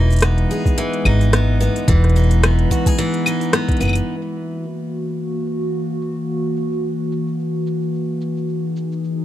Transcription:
Already playing: E1 E3 G#3 D#4
0.10 closed hi-hat, shaker
0.13 closed hi-hat
0.16 closed hi-hat
0.19 closed hi-hat
0.21 cross-stick, closed hi-hat
0.22 B3, closed hi-hat, claves, shaker
0.38 closed hi-hat
0.51 G#4, shaker
0.65 kick, shaker
0.78 E3, closed hi-hat, shaker
0.93 closed hi-hat
1.05 G#1 D#4, claves
1.21 closed hi-hat, shaker
1.33 B3, cross-stick, closed hi-hat, shaker
1.60 B3, shaker
1.76 closed hi-hat, shaker
1.88 E1 E3, kick, closed hi-hat, shaker
2.04 cross-stick, closed hi-hat
2.10 closed hi-hat
2.16 D#4, closed hi-hat, shaker
2.24 closed hi-hat
2.31 closed hi-hat, shaker
2.43 B3, cross-stick, closed hi-hat, claves, shaker
2.59 closed hi-hat
2.71 F#4, kick, shaker
2.86 G#4, kick, closed hi-hat, shaker
2.98 E3, closed hi-hat, shaker
3.14 closed hi-hat
3.26 D#4, claves, shaker
3.41 closed hi-hat, shaker
3.53 B3, cross-stick, closed hi-hat, shaker
3.68 kick, closed hi-hat
3.72 closed hi-hat
3.77 F#1, closed hi-hat
3.80 B3, closed hi-hat, claves, shaker
3.83 closed hi-hat, claves
3.85 claves
3.88 closed hi-hat, claves
3.93 closed hi-hat, claves, shaker
4.07 E3 A#3 F#4, shaker
4.36 shaker
4.52 shaker
4.63 shaker
4.91 shaker
5.06 shaker
5.19 shaker
5.46 shaker
5.62 shaker
5.74 shaker
6.01 shaker
6.17 shaker
6.29 shaker
6.57 shaker
6.72 shaker
6.85 shaker
7.12 shaker
7.27 shaker
7.39 shaker
7.67 shaker
7.82 shaker
7.94 shaker
8.21 shaker
8.37 shaker
8.47 D#4 G#4, shaker
8.76 shaker
8.92 shaker
9.04 shaker

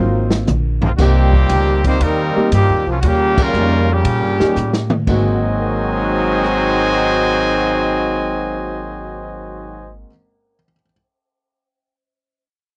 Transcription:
Already playing: G#1 F#3 A#3 C4 D#4 F4 A#4 C5 F5
0.30 snare
0.47 A#1, hi-hat pedal, mid tom
0.82 F#2 C3 F3 A#3 C4 D#4 F4, floor tom
0.97 C2 A#2 D#3 G3 A#3 C4 D#4 F#4 G4, kick, snare, crash
1.33 kick
1.49 C#2, kick, hi-hat pedal, ride
1.84 D#3 G3 A#3 C4 D#4 G4 C5, kick, ride
2.00 D#2 D#3 G3 A#3 C4 D#4 A#4, kick, ride
2.36 G3 A#3 C4 D#4 G4, muted upright bass stroke
2.51 G2 A#2 D#3 G3 A#3 C4 G4, kick, hi-hat pedal, ride
2.69 D#2
2.86 C2 F3 F#3 A#3 C#4 F4
3.00 D#2 A#2 C#3 G3 F#4, kick, ride
3.06 A#3 C#4 G4
3.38 C#3 G3 A#3 C#4 F4, kick, crash
3.42 A#4
3.54 F2 G3 A#3 C#4 D#4 F4, hi-hat pedal
3.89 A#2 C#3 G3 A#3 C#4 G4
4.05 A#2, kick, ride
4.22 G2
4.40 D#2 G3 A#3 C#4 D#4 G4, snare
4.56 A2, hi-hat pedal
4.73 snare
4.90 mid tom
5.07 G#1 G#2 D#3 F#3 G#3 A#3 C4 F#4 C5 D#5 G#5, kick, crash
5.60 A#4
5.67 D#5
5.76 F#5
5.85 A#5
5.94 D#6
6.05 F#6
6.17 A#6
6.44 cross-stick

